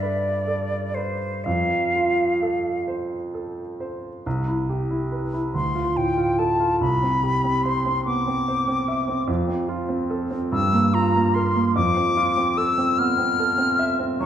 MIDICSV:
0, 0, Header, 1, 3, 480
1, 0, Start_track
1, 0, Key_signature, -1, "major"
1, 0, Tempo, 961538
1, 726, Time_signature, 6, 3, 24, 8
1, 1203, Tempo, 920245
1, 2163, Key_signature, 0, "major"
1, 2163, Tempo, 862069
1, 2643, Tempo, 839161
1, 4563, Tempo, 817439
1, 7962, End_track
2, 0, Start_track
2, 0, Title_t, "Flute"
2, 0, Program_c, 0, 73
2, 1, Note_on_c, 0, 74, 55
2, 472, Note_on_c, 0, 72, 53
2, 479, Note_off_c, 0, 74, 0
2, 720, Note_on_c, 0, 77, 60
2, 728, Note_off_c, 0, 72, 0
2, 1439, Note_off_c, 0, 77, 0
2, 2890, Note_on_c, 0, 84, 57
2, 3132, Note_on_c, 0, 79, 54
2, 3140, Note_off_c, 0, 84, 0
2, 3373, Note_on_c, 0, 81, 52
2, 3381, Note_off_c, 0, 79, 0
2, 3608, Note_off_c, 0, 81, 0
2, 3611, Note_on_c, 0, 83, 64
2, 4084, Note_on_c, 0, 84, 62
2, 4092, Note_off_c, 0, 83, 0
2, 4324, Note_off_c, 0, 84, 0
2, 4327, Note_on_c, 0, 86, 68
2, 5027, Note_off_c, 0, 86, 0
2, 5769, Note_on_c, 0, 88, 78
2, 6015, Note_on_c, 0, 82, 64
2, 6023, Note_off_c, 0, 88, 0
2, 6250, Note_on_c, 0, 84, 65
2, 6259, Note_off_c, 0, 82, 0
2, 6488, Note_off_c, 0, 84, 0
2, 6491, Note_on_c, 0, 86, 81
2, 6975, Note_on_c, 0, 88, 78
2, 6984, Note_off_c, 0, 86, 0
2, 7216, Note_on_c, 0, 89, 89
2, 7224, Note_off_c, 0, 88, 0
2, 7789, Note_off_c, 0, 89, 0
2, 7931, Note_on_c, 0, 85, 78
2, 7962, Note_off_c, 0, 85, 0
2, 7962, End_track
3, 0, Start_track
3, 0, Title_t, "Grand piano"
3, 0, Program_c, 1, 0
3, 0, Control_c, 1, 64, 127
3, 0, Note_on_c, 1, 43, 48
3, 0, Note_on_c, 1, 62, 36
3, 0, Note_on_c, 1, 69, 35
3, 9, Note_on_c, 1, 71, 37
3, 140, Note_off_c, 1, 69, 0
3, 236, Note_on_c, 1, 69, 34
3, 381, Note_off_c, 1, 71, 0
3, 480, Note_on_c, 1, 71, 33
3, 629, Note_off_c, 1, 69, 0
3, 710, Note_off_c, 1, 43, 0
3, 728, Note_off_c, 1, 71, 0
3, 729, Note_on_c, 1, 41, 39
3, 738, Control_c, 1, 64, 0
3, 740, Note_off_c, 1, 62, 0
3, 836, Control_c, 1, 64, 127
3, 977, Note_on_c, 1, 65, 30
3, 1210, Note_on_c, 1, 69, 32
3, 1351, Note_off_c, 1, 65, 0
3, 1447, Note_on_c, 1, 72, 31
3, 1589, Note_off_c, 1, 69, 0
3, 1689, Note_on_c, 1, 69, 30
3, 1830, Note_off_c, 1, 72, 0
3, 1930, Note_on_c, 1, 72, 32
3, 2074, Note_off_c, 1, 69, 0
3, 2144, Note_off_c, 1, 41, 0
3, 2166, Note_off_c, 1, 72, 0
3, 2170, Note_on_c, 1, 36, 44
3, 2175, Control_c, 1, 64, 0
3, 2253, Control_c, 1, 64, 127
3, 2289, Note_on_c, 1, 64, 31
3, 2410, Note_on_c, 1, 67, 37
3, 2479, Note_off_c, 1, 64, 0
3, 2528, Note_on_c, 1, 64, 31
3, 2598, Note_off_c, 1, 67, 0
3, 2646, Note_on_c, 1, 71, 34
3, 2718, Note_off_c, 1, 64, 0
3, 2769, Note_on_c, 1, 64, 32
3, 2840, Note_off_c, 1, 71, 0
3, 2869, Note_off_c, 1, 36, 0
3, 2889, Note_off_c, 1, 64, 0
3, 2889, Note_on_c, 1, 38, 42
3, 2899, Control_c, 1, 64, 0
3, 3008, Note_on_c, 1, 65, 34
3, 3009, Control_c, 1, 64, 127
3, 3130, Note_on_c, 1, 45, 35
3, 3203, Note_off_c, 1, 65, 0
3, 3250, Note_on_c, 1, 65, 37
3, 3323, Note_off_c, 1, 45, 0
3, 3372, Note_on_c, 1, 69, 36
3, 3443, Note_off_c, 1, 65, 0
3, 3493, Note_on_c, 1, 65, 38
3, 3564, Note_off_c, 1, 69, 0
3, 3591, Note_off_c, 1, 38, 0
3, 3613, Note_off_c, 1, 65, 0
3, 3614, Note_on_c, 1, 36, 41
3, 3623, Control_c, 1, 64, 0
3, 3735, Control_c, 1, 64, 127
3, 3739, Note_on_c, 1, 60, 33
3, 3855, Note_on_c, 1, 67, 37
3, 3928, Note_off_c, 1, 60, 0
3, 3976, Note_on_c, 1, 60, 34
3, 4045, Note_off_c, 1, 67, 0
3, 4096, Note_on_c, 1, 72, 36
3, 4164, Note_off_c, 1, 60, 0
3, 4214, Note_on_c, 1, 60, 38
3, 4283, Note_off_c, 1, 72, 0
3, 4329, Note_on_c, 1, 59, 29
3, 4401, Note_off_c, 1, 60, 0
3, 4447, Note_off_c, 1, 59, 0
3, 4452, Note_on_c, 1, 60, 36
3, 4570, Note_on_c, 1, 72, 38
3, 4640, Note_off_c, 1, 60, 0
3, 4687, Note_on_c, 1, 60, 39
3, 4760, Note_off_c, 1, 72, 0
3, 4806, Note_on_c, 1, 76, 40
3, 4877, Note_off_c, 1, 60, 0
3, 4922, Note_on_c, 1, 60, 40
3, 4995, Note_off_c, 1, 76, 0
3, 5019, Note_off_c, 1, 36, 0
3, 5037, Note_on_c, 1, 41, 52
3, 5040, Note_off_c, 1, 60, 0
3, 5050, Control_c, 1, 64, 0
3, 5154, Control_c, 1, 64, 127
3, 5156, Note_on_c, 1, 60, 36
3, 5278, Note_on_c, 1, 65, 43
3, 5348, Note_off_c, 1, 60, 0
3, 5396, Note_on_c, 1, 60, 38
3, 5471, Note_off_c, 1, 65, 0
3, 5521, Note_on_c, 1, 69, 42
3, 5593, Note_off_c, 1, 60, 0
3, 5642, Note_on_c, 1, 60, 42
3, 5717, Note_off_c, 1, 69, 0
3, 5743, Note_off_c, 1, 41, 0
3, 5766, Note_off_c, 1, 60, 0
3, 5768, Note_on_c, 1, 43, 50
3, 5778, Control_c, 1, 64, 0
3, 5868, Control_c, 1, 64, 127
3, 5891, Note_on_c, 1, 58, 42
3, 6014, Note_on_c, 1, 65, 42
3, 6083, Note_off_c, 1, 58, 0
3, 6140, Note_on_c, 1, 58, 41
3, 6204, Note_off_c, 1, 65, 0
3, 6257, Note_on_c, 1, 70, 43
3, 6326, Note_off_c, 1, 58, 0
3, 6374, Note_on_c, 1, 58, 44
3, 6444, Note_off_c, 1, 70, 0
3, 6467, Note_off_c, 1, 43, 0
3, 6491, Note_off_c, 1, 58, 0
3, 6494, Note_on_c, 1, 41, 53
3, 6498, Control_c, 1, 64, 0
3, 6579, Control_c, 1, 64, 127
3, 6615, Note_on_c, 1, 60, 40
3, 6736, Note_on_c, 1, 65, 47
3, 6805, Note_off_c, 1, 60, 0
3, 6855, Note_on_c, 1, 60, 39
3, 6926, Note_off_c, 1, 65, 0
3, 6972, Note_on_c, 1, 69, 41
3, 7045, Note_off_c, 1, 60, 0
3, 7094, Note_on_c, 1, 60, 44
3, 7163, Note_off_c, 1, 69, 0
3, 7215, Note_on_c, 1, 59, 35
3, 7283, Note_off_c, 1, 60, 0
3, 7331, Note_off_c, 1, 59, 0
3, 7331, Note_on_c, 1, 60, 44
3, 7454, Note_on_c, 1, 69, 47
3, 7520, Note_off_c, 1, 60, 0
3, 7564, Note_on_c, 1, 60, 46
3, 7642, Note_off_c, 1, 69, 0
3, 7688, Note_on_c, 1, 76, 51
3, 7757, Note_off_c, 1, 60, 0
3, 7808, Note_on_c, 1, 60, 49
3, 7879, Note_off_c, 1, 76, 0
3, 7906, Note_off_c, 1, 41, 0
3, 7927, Note_off_c, 1, 60, 0
3, 7930, Note_on_c, 1, 42, 60
3, 7937, Control_c, 1, 64, 0
3, 7962, Note_off_c, 1, 42, 0
3, 7962, End_track
0, 0, End_of_file